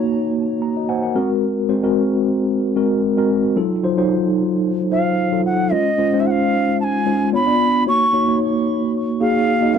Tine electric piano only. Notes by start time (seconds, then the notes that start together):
Already playing: A#3 D#4 F#4 C#5
0.62 A#5
0.77 F#4 D#5
0.89 C5 F#5 G#5
1.03 A#4 F#5
1.15 G#3 C4 F#4 A#4
1.69 G#3 C4 F#4 C5
1.83 G#3 C4 F#4 A#4
2.76 G#3 C4 F#4 A#4
3.17 G#3 C4 F#4 A#4
3.56 F#3 D#4 F4 A4
3.83 F#3 D#4 F4 C5
3.97 F#3 D#4 F4 C5
4.91 F#3 D#4 F4 C5
5.32 F#3 D#4 F4 A4
5.71 G#3 C#4 F4 C5
5.98 G#3 C#4 F4 C5
6.13 G#3 C#4 D#4 C5
6.20 F4
7.06 G#3 C#4 F4 C5
7.32 B3 D4 F4 C#5
7.46 B3 D4 F4 D5
7.86 A#3 D#4 F#4 C#5
8.13 A#3 D#4 F#4 C#5
8.28 A#3 D#4 F#4 C#5
9.20 A#3 D#4 F#4 G#4
9.60 A#3 D#4 F#4 D#5
9.74 G#3 C4 F#4 A#4